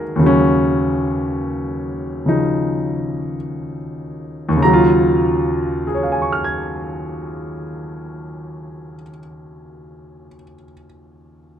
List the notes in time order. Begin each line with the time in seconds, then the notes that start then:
Already playing: D#2 C#3 D#3 F#3 G#3 D#4 F#4 G#4 A#4 F#5
0.16 D#2 C#3
0.23 F#3 C#4
2.26 C#3 F3 D#4
4.49 D#2
4.57 C#3
4.62 F#3 A#5
4.73 F4
5.87 G#4
5.94 C#5
6.03 F5
6.12 G#5
6.22 C#6
6.33 F6
6.44 G#6